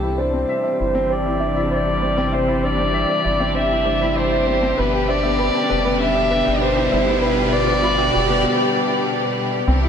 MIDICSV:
0, 0, Header, 1, 7, 480
1, 0, Start_track
1, 0, Tempo, 612245
1, 1824, Time_signature, 4, 2, 24, 8
1, 7751, End_track
2, 0, Start_track
2, 0, Title_t, "Violin"
2, 0, Program_c, 0, 40
2, 0, Note_on_c, 0, 67, 79
2, 151, Note_on_c, 0, 72, 94
2, 163, Note_off_c, 0, 67, 0
2, 873, Note_on_c, 0, 74, 93
2, 885, Note_off_c, 0, 72, 0
2, 1349, Note_off_c, 0, 74, 0
2, 1355, Note_on_c, 0, 74, 94
2, 1831, Note_on_c, 0, 72, 87
2, 1843, Note_off_c, 0, 74, 0
2, 2074, Note_on_c, 0, 74, 104
2, 2086, Note_off_c, 0, 72, 0
2, 2789, Note_off_c, 0, 74, 0
2, 2800, Note_on_c, 0, 76, 104
2, 3275, Note_on_c, 0, 72, 101
2, 3286, Note_off_c, 0, 76, 0
2, 3756, Note_on_c, 0, 71, 93
2, 3767, Note_off_c, 0, 72, 0
2, 3996, Note_on_c, 0, 74, 105
2, 4008, Note_off_c, 0, 71, 0
2, 4706, Note_off_c, 0, 74, 0
2, 4710, Note_on_c, 0, 76, 115
2, 5192, Note_on_c, 0, 72, 97
2, 5203, Note_off_c, 0, 76, 0
2, 5668, Note_on_c, 0, 71, 94
2, 5680, Note_off_c, 0, 72, 0
2, 5906, Note_on_c, 0, 74, 111
2, 5918, Note_off_c, 0, 71, 0
2, 6625, Note_off_c, 0, 74, 0
2, 7751, End_track
3, 0, Start_track
3, 0, Title_t, "Synth arpeggio sound"
3, 0, Program_c, 1, 84
3, 139, Note_on_c, 1, 72, 90
3, 221, Note_off_c, 1, 72, 0
3, 260, Note_on_c, 1, 72, 72
3, 315, Note_off_c, 1, 72, 0
3, 380, Note_on_c, 1, 76, 96
3, 462, Note_off_c, 1, 76, 0
3, 498, Note_on_c, 1, 76, 99
3, 554, Note_off_c, 1, 76, 0
3, 619, Note_on_c, 1, 72, 74
3, 675, Note_off_c, 1, 72, 0
3, 861, Note_on_c, 1, 72, 98
3, 942, Note_off_c, 1, 72, 0
3, 980, Note_on_c, 1, 72, 77
3, 1035, Note_off_c, 1, 72, 0
3, 1098, Note_on_c, 1, 76, 93
3, 1180, Note_off_c, 1, 76, 0
3, 1219, Note_on_c, 1, 76, 92
3, 1275, Note_off_c, 1, 76, 0
3, 1339, Note_on_c, 1, 72, 69
3, 1395, Note_off_c, 1, 72, 0
3, 1583, Note_on_c, 1, 72, 98
3, 1663, Note_off_c, 1, 72, 0
3, 1703, Note_on_c, 1, 72, 78
3, 1756, Note_off_c, 1, 72, 0
3, 1820, Note_on_c, 1, 76, 94
3, 1902, Note_off_c, 1, 76, 0
3, 1942, Note_on_c, 1, 76, 93
3, 1996, Note_off_c, 1, 76, 0
3, 2062, Note_on_c, 1, 72, 67
3, 2116, Note_off_c, 1, 72, 0
3, 2302, Note_on_c, 1, 72, 90
3, 2382, Note_off_c, 1, 72, 0
3, 2422, Note_on_c, 1, 72, 72
3, 2476, Note_off_c, 1, 72, 0
3, 2543, Note_on_c, 1, 76, 95
3, 2623, Note_off_c, 1, 76, 0
3, 2662, Note_on_c, 1, 76, 94
3, 2716, Note_off_c, 1, 76, 0
3, 2782, Note_on_c, 1, 72, 75
3, 2836, Note_off_c, 1, 72, 0
3, 3021, Note_on_c, 1, 72, 102
3, 3102, Note_off_c, 1, 72, 0
3, 3141, Note_on_c, 1, 72, 75
3, 3196, Note_off_c, 1, 72, 0
3, 3262, Note_on_c, 1, 76, 94
3, 3343, Note_off_c, 1, 76, 0
3, 3383, Note_on_c, 1, 76, 99
3, 3437, Note_off_c, 1, 76, 0
3, 3502, Note_on_c, 1, 72, 71
3, 3556, Note_off_c, 1, 72, 0
3, 3742, Note_on_c, 1, 71, 100
3, 3822, Note_off_c, 1, 71, 0
3, 3864, Note_on_c, 1, 71, 74
3, 3917, Note_off_c, 1, 71, 0
3, 3984, Note_on_c, 1, 76, 91
3, 4063, Note_off_c, 1, 76, 0
3, 4100, Note_on_c, 1, 76, 102
3, 4155, Note_off_c, 1, 76, 0
3, 4224, Note_on_c, 1, 71, 82
3, 4277, Note_off_c, 1, 71, 0
3, 4463, Note_on_c, 1, 71, 96
3, 4543, Note_off_c, 1, 71, 0
3, 4587, Note_on_c, 1, 71, 75
3, 4638, Note_off_c, 1, 71, 0
3, 4705, Note_on_c, 1, 76, 92
3, 4784, Note_off_c, 1, 76, 0
3, 4822, Note_on_c, 1, 76, 104
3, 4876, Note_off_c, 1, 76, 0
3, 4943, Note_on_c, 1, 71, 75
3, 4997, Note_off_c, 1, 71, 0
3, 5183, Note_on_c, 1, 71, 91
3, 5263, Note_off_c, 1, 71, 0
3, 5303, Note_on_c, 1, 71, 76
3, 5356, Note_off_c, 1, 71, 0
3, 5421, Note_on_c, 1, 76, 107
3, 5502, Note_off_c, 1, 76, 0
3, 5542, Note_on_c, 1, 76, 111
3, 5596, Note_off_c, 1, 76, 0
3, 5660, Note_on_c, 1, 71, 84
3, 5715, Note_off_c, 1, 71, 0
3, 5902, Note_on_c, 1, 71, 91
3, 5983, Note_off_c, 1, 71, 0
3, 6023, Note_on_c, 1, 71, 84
3, 6076, Note_off_c, 1, 71, 0
3, 6138, Note_on_c, 1, 76, 106
3, 6221, Note_off_c, 1, 76, 0
3, 6257, Note_on_c, 1, 76, 102
3, 6314, Note_off_c, 1, 76, 0
3, 6376, Note_on_c, 1, 71, 76
3, 6433, Note_off_c, 1, 71, 0
3, 7751, End_track
4, 0, Start_track
4, 0, Title_t, "Grand piano"
4, 0, Program_c, 2, 0
4, 22, Note_on_c, 2, 64, 63
4, 40, Control_c, 2, 64, 127
4, 137, Note_off_c, 2, 64, 0
4, 142, Note_on_c, 2, 62, 73
4, 257, Note_off_c, 2, 62, 0
4, 262, Note_on_c, 2, 60, 62
4, 332, Note_off_c, 2, 60, 0
4, 385, Note_on_c, 2, 76, 71
4, 498, Note_off_c, 2, 76, 0
4, 504, Note_on_c, 2, 74, 64
4, 618, Note_off_c, 2, 74, 0
4, 624, Note_on_c, 2, 64, 66
4, 738, Note_off_c, 2, 64, 0
4, 743, Note_on_c, 2, 60, 89
4, 858, Note_off_c, 2, 60, 0
4, 865, Note_on_c, 2, 67, 67
4, 979, Note_off_c, 2, 67, 0
4, 986, Note_on_c, 2, 64, 67
4, 1099, Note_off_c, 2, 64, 0
4, 1103, Note_on_c, 2, 62, 90
4, 1218, Note_off_c, 2, 62, 0
4, 1226, Note_on_c, 2, 64, 92
4, 1339, Note_off_c, 2, 64, 0
4, 1346, Note_on_c, 2, 72, 70
4, 1413, Note_off_c, 2, 72, 0
4, 1463, Note_on_c, 2, 74, 65
4, 1578, Note_off_c, 2, 74, 0
4, 1585, Note_on_c, 2, 60, 68
4, 1693, Note_off_c, 2, 60, 0
4, 1705, Note_on_c, 2, 60, 95
4, 1813, Note_off_c, 2, 60, 0
4, 1825, Note_on_c, 2, 60, 81
4, 1893, Note_off_c, 2, 60, 0
4, 1943, Note_on_c, 2, 64, 74
4, 2058, Note_off_c, 2, 64, 0
4, 2067, Note_on_c, 2, 62, 84
4, 2180, Note_off_c, 2, 62, 0
4, 2186, Note_on_c, 2, 60, 68
4, 2254, Note_off_c, 2, 60, 0
4, 2303, Note_on_c, 2, 76, 74
4, 2418, Note_off_c, 2, 76, 0
4, 2426, Note_on_c, 2, 74, 72
4, 2539, Note_off_c, 2, 74, 0
4, 2546, Note_on_c, 2, 64, 69
4, 2659, Note_off_c, 2, 64, 0
4, 2667, Note_on_c, 2, 60, 91
4, 2780, Note_off_c, 2, 60, 0
4, 2787, Note_on_c, 2, 67, 78
4, 2900, Note_off_c, 2, 67, 0
4, 2910, Note_on_c, 2, 64, 70
4, 3021, Note_off_c, 2, 64, 0
4, 3026, Note_on_c, 2, 62, 90
4, 3139, Note_off_c, 2, 62, 0
4, 3148, Note_on_c, 2, 64, 101
4, 3260, Note_off_c, 2, 64, 0
4, 3267, Note_on_c, 2, 72, 78
4, 3334, Note_off_c, 2, 72, 0
4, 3384, Note_on_c, 2, 74, 66
4, 3498, Note_off_c, 2, 74, 0
4, 3505, Note_on_c, 2, 60, 73
4, 3615, Note_off_c, 2, 60, 0
4, 3627, Note_on_c, 2, 60, 98
4, 3739, Note_off_c, 2, 60, 0
4, 3745, Note_on_c, 2, 59, 82
4, 3753, Control_c, 2, 64, 0
4, 3813, Note_off_c, 2, 59, 0
4, 3865, Note_on_c, 2, 67, 74
4, 3881, Control_c, 2, 64, 127
4, 3979, Note_off_c, 2, 67, 0
4, 3986, Note_on_c, 2, 62, 85
4, 4099, Note_off_c, 2, 62, 0
4, 4107, Note_on_c, 2, 59, 72
4, 4174, Note_off_c, 2, 59, 0
4, 4226, Note_on_c, 2, 83, 78
4, 4339, Note_off_c, 2, 83, 0
4, 4347, Note_on_c, 2, 79, 67
4, 4460, Note_off_c, 2, 79, 0
4, 4466, Note_on_c, 2, 67, 73
4, 4579, Note_off_c, 2, 67, 0
4, 4586, Note_on_c, 2, 59, 96
4, 4699, Note_off_c, 2, 59, 0
4, 4708, Note_on_c, 2, 71, 75
4, 4820, Note_off_c, 2, 71, 0
4, 4828, Note_on_c, 2, 67, 79
4, 4940, Note_off_c, 2, 67, 0
4, 4949, Note_on_c, 2, 62, 97
4, 5060, Note_off_c, 2, 62, 0
4, 5063, Note_on_c, 2, 67, 97
4, 5178, Note_off_c, 2, 67, 0
4, 5185, Note_on_c, 2, 74, 78
4, 5253, Note_off_c, 2, 74, 0
4, 5304, Note_on_c, 2, 79, 75
4, 5418, Note_off_c, 2, 79, 0
4, 5427, Note_on_c, 2, 59, 77
4, 5535, Note_off_c, 2, 59, 0
4, 5547, Note_on_c, 2, 59, 106
4, 5653, Note_off_c, 2, 59, 0
4, 5665, Note_on_c, 2, 59, 81
4, 5733, Note_off_c, 2, 59, 0
4, 5781, Note_on_c, 2, 67, 77
4, 5897, Note_off_c, 2, 67, 0
4, 5900, Note_on_c, 2, 62, 88
4, 6016, Note_off_c, 2, 62, 0
4, 6023, Note_on_c, 2, 59, 77
4, 6092, Note_off_c, 2, 59, 0
4, 6140, Note_on_c, 2, 83, 83
4, 6256, Note_off_c, 2, 83, 0
4, 6262, Note_on_c, 2, 79, 73
4, 6377, Note_off_c, 2, 79, 0
4, 6380, Note_on_c, 2, 67, 78
4, 6496, Note_off_c, 2, 67, 0
4, 6503, Note_on_c, 2, 59, 105
4, 6618, Note_off_c, 2, 59, 0
4, 7585, Note_on_c, 2, 60, 88
4, 7596, Control_c, 2, 64, 0
4, 7653, Note_off_c, 2, 60, 0
4, 7706, Note_on_c, 2, 64, 75
4, 7707, Control_c, 2, 64, 127
4, 7751, Note_off_c, 2, 64, 0
4, 7751, End_track
5, 0, Start_track
5, 0, Title_t, "String section"
5, 0, Program_c, 3, 48
5, 0, Note_on_c, 3, 48, 75
5, 0, Note_on_c, 3, 52, 70
5, 0, Note_on_c, 3, 55, 73
5, 0, Note_on_c, 3, 62, 65
5, 0, Note_on_c, 3, 67, 83
5, 3710, Note_off_c, 3, 48, 0
5, 3710, Note_off_c, 3, 52, 0
5, 3711, Note_off_c, 3, 55, 0
5, 3745, Note_on_c, 3, 50, 80
5, 3746, Note_on_c, 3, 55, 77
5, 3748, Note_on_c, 3, 47, 87
5, 7550, Note_off_c, 3, 62, 0
5, 7550, Note_off_c, 3, 67, 0
5, 7554, Note_off_c, 3, 50, 0
5, 7554, Note_off_c, 3, 55, 0
5, 7555, Note_off_c, 3, 47, 0
5, 7583, Note_on_c, 3, 52, 78
5, 7584, Note_on_c, 3, 48, 92
5, 7584, Note_on_c, 3, 55, 80
5, 7585, Note_on_c, 3, 62, 84
5, 7587, Note_on_c, 3, 67, 96
5, 7751, Note_off_c, 3, 48, 0
5, 7751, Note_off_c, 3, 52, 0
5, 7751, Note_off_c, 3, 55, 0
5, 7751, Note_off_c, 3, 62, 0
5, 7751, Note_off_c, 3, 67, 0
5, 7751, End_track
6, 0, Start_track
6, 0, Title_t, "Analog synth bass"
6, 0, Program_c, 4, 38
6, 0, Note_on_c, 4, 36, 96
6, 349, Note_off_c, 4, 36, 0
6, 625, Note_on_c, 4, 31, 96
6, 2389, Note_off_c, 4, 31, 0
6, 2544, Note_on_c, 4, 31, 94
6, 3709, Note_off_c, 4, 31, 0
6, 3748, Note_on_c, 4, 31, 110
6, 4311, Note_off_c, 4, 31, 0
6, 4469, Note_on_c, 4, 29, 96
6, 5031, Note_off_c, 4, 29, 0
6, 5069, Note_on_c, 4, 31, 86
6, 5391, Note_off_c, 4, 31, 0
6, 5425, Note_on_c, 4, 31, 82
6, 6349, Note_off_c, 4, 31, 0
6, 6386, Note_on_c, 4, 29, 103
6, 6625, Note_off_c, 4, 29, 0
6, 7583, Note_on_c, 4, 36, 109
6, 7751, Note_off_c, 4, 36, 0
6, 7751, End_track
7, 0, Start_track
7, 0, Title_t, "Riser"
7, 0, Program_c, 5, 103
7, 0, Note_on_c, 5, 60, 70
7, 6624, Note_off_c, 5, 60, 0
7, 7751, End_track
0, 0, End_of_file